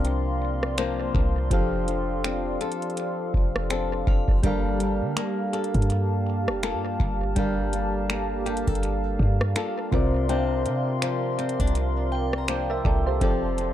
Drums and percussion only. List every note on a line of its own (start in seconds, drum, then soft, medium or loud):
0.05 closed hi-hat medium
0.63 cross-stick medium
0.78 finger snap loud
0.78 closed hi-hat medium
1.15 kick loud
1.51 kick loud
1.51 closed hi-hat medium
1.88 closed hi-hat medium
2.24 finger snap loud
2.24 closed hi-hat medium
2.61 closed hi-hat medium
2.72 closed hi-hat medium
2.82 closed hi-hat soft
2.90 closed hi-hat soft
2.97 closed hi-hat medium
3.34 kick loud
3.56 cross-stick loud
3.70 finger snap loud
3.70 closed hi-hat medium
4.07 kick loud
4.28 kick medium
4.43 kick loud
4.43 closed hi-hat medium
4.80 closed hi-hat medium
5.17 finger snap loud
5.17 closed hi-hat medium
5.53 closed hi-hat medium
5.64 closed hi-hat medium
5.74 kick medium
5.74 closed hi-hat soft
5.82 closed hi-hat soft
5.90 closed hi-hat medium
6.48 cross-stick loud
6.63 finger snap loud
6.63 closed hi-hat medium
7.00 kick medium
7.36 kick loud
7.36 closed hi-hat medium
7.73 closed hi-hat medium
8.10 finger snap loud
8.10 closed hi-hat medium
8.46 closed hi-hat medium
8.57 closed hi-hat medium
8.67 kick medium
8.67 closed hi-hat soft
8.75 closed hi-hat soft
8.83 closed hi-hat medium
9.20 kick loud
9.41 cross-stick loud
9.56 finger snap loud
9.56 closed hi-hat medium
9.93 kick loud
10.29 closed hi-hat medium
10.66 closed hi-hat medium
11.02 finger snap loud
11.02 closed hi-hat medium
11.39 closed hi-hat medium
11.49 closed hi-hat medium
11.60 kick medium
11.60 closed hi-hat soft
11.67 closed hi-hat soft
11.75 closed hi-hat medium
12.33 cross-stick loud
12.48 finger snap loud
12.48 closed hi-hat medium
12.85 kick loud
13.21 kick loud
13.21 closed hi-hat medium
13.58 closed hi-hat medium